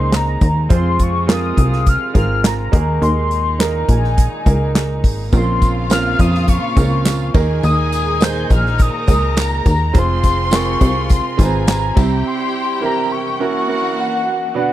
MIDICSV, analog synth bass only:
0, 0, Header, 1, 2, 480
1, 0, Start_track
1, 0, Key_signature, -4, "minor"
1, 0, Tempo, 576923
1, 591, Time_signature, 4, 2, 24, 8
1, 12254, End_track
2, 0, Start_track
2, 0, Title_t, "Analog synth bass"
2, 0, Program_c, 0, 38
2, 0, Note_on_c, 0, 37, 90
2, 315, Note_off_c, 0, 37, 0
2, 343, Note_on_c, 0, 39, 87
2, 570, Note_off_c, 0, 39, 0
2, 585, Note_on_c, 0, 41, 107
2, 1275, Note_off_c, 0, 41, 0
2, 1312, Note_on_c, 0, 36, 90
2, 1647, Note_off_c, 0, 36, 0
2, 1788, Note_on_c, 0, 32, 87
2, 2237, Note_off_c, 0, 32, 0
2, 2271, Note_on_c, 0, 39, 96
2, 2495, Note_off_c, 0, 39, 0
2, 2510, Note_on_c, 0, 39, 101
2, 3198, Note_off_c, 0, 39, 0
2, 3233, Note_on_c, 0, 34, 89
2, 3568, Note_off_c, 0, 34, 0
2, 3713, Note_on_c, 0, 37, 88
2, 4193, Note_on_c, 0, 32, 81
2, 4205, Note_off_c, 0, 37, 0
2, 4416, Note_off_c, 0, 32, 0
2, 4434, Note_on_c, 0, 34, 101
2, 5121, Note_off_c, 0, 34, 0
2, 5153, Note_on_c, 0, 41, 88
2, 5488, Note_off_c, 0, 41, 0
2, 5630, Note_on_c, 0, 37, 96
2, 6079, Note_off_c, 0, 37, 0
2, 6111, Note_on_c, 0, 39, 94
2, 6336, Note_off_c, 0, 39, 0
2, 6353, Note_on_c, 0, 39, 102
2, 7040, Note_off_c, 0, 39, 0
2, 7075, Note_on_c, 0, 34, 93
2, 7410, Note_off_c, 0, 34, 0
2, 7553, Note_on_c, 0, 37, 90
2, 8001, Note_off_c, 0, 37, 0
2, 8036, Note_on_c, 0, 39, 92
2, 8259, Note_off_c, 0, 39, 0
2, 8274, Note_on_c, 0, 29, 99
2, 8961, Note_off_c, 0, 29, 0
2, 8994, Note_on_c, 0, 36, 90
2, 9329, Note_off_c, 0, 36, 0
2, 9475, Note_on_c, 0, 32, 99
2, 9922, Note_off_c, 0, 32, 0
2, 9957, Note_on_c, 0, 36, 100
2, 10180, Note_off_c, 0, 36, 0
2, 12254, End_track
0, 0, End_of_file